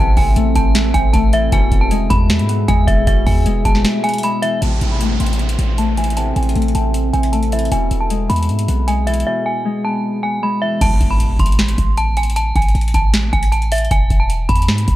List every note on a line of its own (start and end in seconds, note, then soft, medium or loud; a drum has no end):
0.00 0.16 A1 loud
0.00 1.57 C3 loud
0.00 0.36 A3 loud
0.00 0.55 C4 medium
0.00 1.49 C4 medium
0.00 1.49 A4 medium
0.00 1.48 E5 medium
0.00 0.14 A5 medium
0.17 0.35 A1 loud
0.17 0.53 G#5 medium
0.17 kick loud
0.17 open hi-hat medium
0.36 0.55 A1 loud
0.36 1.13 A3 medium
0.36 closed hi-hat medium
0.56 0.93 A1 loud
0.56 0.94 C4 medium
0.56 0.72 A5 medium
0.56 kick loud
0.56 closed hi-hat medium
0.75 snare loud
0.75 closed hi-hat medium
0.94 1.13 A1 loud
0.94 1.58 C4 medium
0.94 1.10 G#5 medium
0.94 kick medium
0.94 closed hi-hat medium
1.13 1.51 A1 loud
1.13 1.97 A3 medium
1.13 1.30 A5 medium
1.13 kick medium
1.13 closed hi-hat medium
1.33 1.57 E3 medium
1.33 1.49 E5 medium
1.33 closed hi-hat medium
1.52 1.71 E1 loud
1.52 3.06 B2 loud
1.52 4.59 B3 medium
1.52 4.59 G#4 medium
1.52 4.59 E5 medium
1.52 1.80 G#5 loud
1.52 kick loud
1.52 closed hi-hat medium
1.72 2.09 E1 loud
1.72 kick loud
1.72 closed hi-hat medium
1.81 1.89 A5 medium
1.91 2.67 G#3 medium
1.91 closed hi-hat medium
2.10 2.41 E2 loud
2.10 2.48 B3 medium
2.10 2.65 B5 medium
2.10 kick loud
2.10 closed hi-hat medium
2.30 snare loud
2.30 closed hi-hat medium
2.39 2.67 G#2 loud
2.39 closed hi-hat soft
2.49 3.65 B3 medium
2.49 closed hi-hat medium
2.68 2.87 E2 loud
2.68 3.45 G#3 medium
2.68 2.85 G#5 medium
2.68 kick medium
2.68 closed hi-hat medium
2.87 3.06 E1 loud
2.87 3.12 E3 medium
2.87 3.04 E5 medium
2.87 kick loud
2.87 closed hi-hat medium
3.07 3.26 E1 loud
3.07 4.67 B2 loud
3.07 3.23 E5 medium
3.07 kick loud
3.07 closed hi-hat medium
3.27 3.45 E2 loud
3.27 3.63 G#5 medium
3.27 kick loud
3.27 open hi-hat medium
3.46 3.64 E1 loud
3.46 4.22 G#3 medium
3.46 closed hi-hat medium
3.65 3.85 E1 loud
3.65 4.04 B3 medium
3.65 3.81 A5 medium
3.65 kick loud
3.65 closed hi-hat medium
3.75 snare medium
3.85 snare loud
3.85 closed hi-hat medium
4.04 4.68 B3 medium
4.04 4.20 G#5 medium
4.04 closed hi-hat soft
4.09 closed hi-hat medium
4.14 closed hi-hat medium
4.18 closed hi-hat medium
4.23 4.67 G#3 medium
4.23 4.40 B5 medium
4.23 closed hi-hat medium
4.42 4.67 E3 medium
4.42 4.59 E5 medium
4.42 closed hi-hat medium
4.62 4.81 A1 loud
4.62 6.16 C3 medium
4.62 7.69 C4 medium
4.62 7.69 A4 medium
4.62 10.77 E5 medium
4.62 4.89 A5 loud
4.62 closed hi-hat medium
4.62 downlifter medium
4.81 5.18 A1 loud
4.81 closed hi-hat medium
4.91 4.99 B5 medium
5.01 5.78 A3 medium
5.01 closed hi-hat medium
5.20 5.57 A1 loud
5.20 5.58 C4 medium
5.20 5.75 C6 medium
5.20 closed hi-hat medium
5.26 closed hi-hat medium
5.33 closed hi-hat medium
5.39 closed hi-hat soft
5.49 closed hi-hat medium
5.59 6.33 A1 loud
5.59 6.74 C4 medium
5.59 closed hi-hat medium
5.78 6.55 A3 medium
5.78 5.94 A5 medium
5.78 closed hi-hat medium
5.97 6.22 E3 medium
5.97 6.14 G#5 medium
5.97 closed hi-hat medium
6.04 closed hi-hat medium
6.10 closed hi-hat medium
6.17 7.77 C3 medium
6.17 6.33 A5 medium
6.17 closed hi-hat medium
6.36 6.55 A1 loud
6.36 6.73 G#5 medium
6.36 closed hi-hat soft
6.43 closed hi-hat soft
6.49 closed hi-hat soft
6.55 6.74 A1 loud
6.55 7.32 A3 medium
6.55 closed hi-hat soft
6.62 closed hi-hat soft
6.68 closed hi-hat soft
6.75 7.12 A1 loud
6.75 7.13 C4 medium
6.75 6.91 A5 medium
6.75 closed hi-hat medium
6.94 closed hi-hat medium
7.13 7.69 A1 loud
7.13 7.78 C4 medium
7.13 7.30 G#5 medium
7.13 closed hi-hat soft
7.23 closed hi-hat medium
7.33 8.16 A3 medium
7.33 7.49 A5 medium
7.33 closed hi-hat medium
7.43 closed hi-hat soft
7.52 7.77 E3 medium
7.52 7.69 E5 medium
7.52 closed hi-hat medium
7.59 closed hi-hat medium
7.65 closed hi-hat soft
7.72 7.90 E1 loud
7.72 9.25 B2 loud
7.72 10.78 B3 medium
7.72 10.78 G#4 medium
7.72 7.99 G#5 medium
7.72 closed hi-hat medium
7.91 8.28 E1 loud
7.91 closed hi-hat medium
8.01 8.09 A5 medium
8.10 8.87 G#3 medium
8.10 closed hi-hat medium
8.29 8.51 E2 loud
8.29 8.68 B3 medium
8.29 8.84 B5 medium
8.29 closed hi-hat medium
8.36 closed hi-hat medium
8.43 closed hi-hat medium
8.49 8.67 G#2 loud
8.49 closed hi-hat soft
8.59 closed hi-hat medium
8.68 9.24 B1 loud
8.68 9.84 B3 medium
8.68 closed hi-hat medium
8.88 9.64 G#3 medium
8.88 9.04 G#5 medium
8.88 closed hi-hat medium
9.07 9.31 E3 medium
9.07 9.23 E5 medium
9.07 closed hi-hat medium
9.14 closed hi-hat medium
9.20 closed hi-hat medium
9.27 10.86 B2 medium
9.27 9.43 E5 medium
9.46 9.82 G#5 medium
9.65 10.41 G#3 medium
9.84 10.23 B3 medium
9.84 10.01 A5 medium
10.23 13.34 B3 medium
10.23 10.39 G#5 medium
10.42 10.86 G#3 medium
10.42 10.59 B5 medium
10.62 10.86 E3 medium
10.62 10.78 E5 medium
10.81 11.00 A1 loud
10.81 11.09 A5 loud
10.81 kick loud
10.81 closed hi-hat medium
10.81 crash medium
10.81 impact medium
11.01 11.38 A1 loud
11.01 kick medium
11.01 closed hi-hat medium
11.11 11.19 B5 medium
11.20 closed hi-hat medium
11.39 11.77 A1 loud
11.39 11.94 C6 medium
11.39 kick loud
11.39 closed hi-hat medium
11.46 closed hi-hat medium
11.52 closed hi-hat medium
11.59 snare loud
11.59 closed hi-hat soft
11.68 closed hi-hat medium
11.78 12.52 A1 loud
11.78 kick medium
11.78 closed hi-hat medium
11.97 12.14 A5 medium
11.97 closed hi-hat medium
12.17 12.33 G#5 medium
12.17 closed hi-hat medium
12.23 closed hi-hat medium
12.30 closed hi-hat medium
12.36 12.52 A5 medium
12.36 closed hi-hat medium
12.56 12.74 A1 loud
12.56 12.92 G#5 medium
12.56 kick loud
12.56 closed hi-hat soft
12.62 closed hi-hat soft
12.68 closed hi-hat soft
12.75 12.93 A1 loud
12.75 closed hi-hat soft
12.81 closed hi-hat soft
12.88 closed hi-hat soft
12.94 13.31 A1 loud
12.94 13.11 A5 medium
12.94 kick medium
12.94 closed hi-hat medium
13.14 snare loud
13.14 closed hi-hat medium
13.33 13.89 A1 loud
13.33 13.49 G#5 medium
13.33 kick medium
13.33 closed hi-hat soft
13.43 closed hi-hat medium
13.52 13.68 A5 medium
13.52 closed hi-hat medium
13.62 closed hi-hat soft
13.72 13.88 E5 medium
13.72 closed hi-hat medium
13.72 open hi-hat medium
13.78 closed hi-hat medium
13.85 closed hi-hat soft
13.91 14.10 E1 loud
13.91 14.18 G#5 loud
13.91 kick loud
13.91 closed hi-hat medium
14.10 14.48 E1 loud
14.10 kick loud
14.10 closed hi-hat medium
14.20 14.28 A5 medium
14.30 closed hi-hat medium
14.49 14.70 E2 loud
14.49 14.96 B5 medium
14.49 kick loud
14.49 closed hi-hat medium
14.56 closed hi-hat medium
14.62 closed hi-hat medium
14.68 14.87 G#2 loud
14.68 snare loud
14.68 closed hi-hat soft
14.78 closed hi-hat medium
14.88 14.96 B1 loud
14.88 kick medium
14.88 closed hi-hat medium